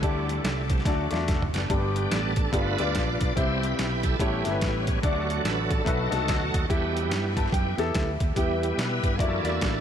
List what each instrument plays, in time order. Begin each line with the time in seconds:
0.02 fingered electric bass D2, grand piano D3 A3 D4 G4 D5, tonewheel organ G3 A3 D4, kick, closed hi-hat
0.29 closed hi-hat
0.44 fingered electric bass C2, snare, closed hi-hat
0.52 tonewheel organ E4
0.63 tonewheel organ D4
0.70 tonewheel organ C4, kick, closed hi-hat
0.78 tonewheel organ D4, snare
0.85 fingered electric bass D2, grand piano D3 A3 D4 F#4 D5, tonewheel organ F#3 A3 D4, kick, snare, closed hi-hat
1.11 fingered electric bass E2, grand piano A3 D4 F4 D5, snare, closed hi-hat
1.17 grand piano F#4
1.28 fingered electric bass F1, kick, snare, closed hi-hat
1.42 floor tom
1.53 fingered electric bass F#1, tonewheel organ B3 D4 G4, snare, closed hi-hat
1.69 fingered electric bass G1, grand piano G2 A3 D4 G4 D5, tonewheel organ G3 B3 D4, kick, closed hi-hat
1.74 grand piano B3
1.96 closed hi-hat
2.11 fingered electric bass A1, tonewheel organ D4 A4, snare, closed hi-hat
2.36 kick, closed hi-hat
2.51 fingered electric bass G1, grand piano G2 B3 F4 G4 D5, tonewheel organ A3 B3 D4 F4 B4, kick, closed hi-hat
2.78 fingered electric bass D2, grand piano B3 F4 G4 D5, tonewheel organ F4 B4 D5, snare, closed hi-hat
2.95 fingered electric bass A#1, kick, snare, closed hi-hat
3.21 fingered electric bass B1, tonewheel organ D5, kick, closed hi-hat
3.36 fingered electric bass C2, grand piano C3 C4 E4 G4 E5, tonewheel organ G3 C4 E4 G4 C5, kick, closed hi-hat
3.63 tonewheel organ E4 G4 B4, closed hi-hat
3.79 fingered electric bass B1, snare, closed hi-hat
4.03 tonewheel organ A4, kick, closed hi-hat
4.19 fingered electric bass A1, grand piano A2 A3 E4 G4 C#5, tonewheel organ G3 B3 C#4 E4 G4, kick, closed hi-hat
4.43 fingered electric bass G1, tonewheel organ G3 C#4 E4, grand piano A3 E4 G4 A#4, snare, closed hi-hat
4.51 grand piano B4
4.61 fingered electric bass A1, kick, snare, closed hi-hat
4.87 kick, closed hi-hat
5.02 fingered electric bass D2, grand piano D3 A3 D4 F#4 D5, tonewheel organ F#3 A3 D4 F#4, kick, closed hi-hat
5.30 closed hi-hat
5.45 fingered electric bass A1, tonewheel organ B4, snare, closed hi-hat
5.71 tonewheel organ A4, kick, closed hi-hat
5.84 fingered electric bass B1, grand piano B2 A3 D#4 F#4 B4, tonewheel organ F#3 A3 D#4 F#4 A4, kick, closed hi-hat
6.10 fingered electric bass C2, grand piano A3 D#4 F#4 A4, snare, closed hi-hat
6.28 fingered electric bass D2, kick, snare, closed hi-hat
6.54 fingered electric bass D#2, kick, closed hi-hat
6.68 fingered electric bass E2, grand piano E3 B3 E4 G4 E5, tonewheel organ G3 B3 E4 G4, kick, closed hi-hat
6.97 closed hi-hat
7.11 fingered electric bass G2, snare, closed hi-hat
7.37 grand piano A5, kick, closed hi-hat
7.46 snare
7.52 fingered electric bass F#2, tonewheel organ G3 B3 E4, grand piano G5, kick, closed hi-hat
7.77 fingered electric bass E2, grand piano B3 E4 G4 A4, snare, closed hi-hat
7.95 fingered electric bass D2, grand piano E5, kick, snare, closed hi-hat
8.20 fingered electric bass D#2, kick, closed hi-hat
8.35 fingered electric bass E2, grand piano E3 B3 E4 G4 E5, tonewheel organ G3 B3 E4 G4, kick, closed hi-hat
8.63 closed hi-hat
8.78 fingered electric bass B2, tonewheel organ B4, snare, closed hi-hat
9.03 fingered electric bass G2, tonewheel organ B4, kick, closed hi-hat
9.16 fingered electric bass F#2, grand piano A#3 E4 F#4, tonewheel organ G#4, kick
9.20 tonewheel organ E3 A#3 D4 E4, grand piano D5, closed hi-hat
9.24 tonewheel organ A4
9.43 fingered electric bass E2, grand piano A#3 E4 F#4 D5, snare, closed hi-hat
9.61 fingered electric bass A1, kick, snare, closed hi-hat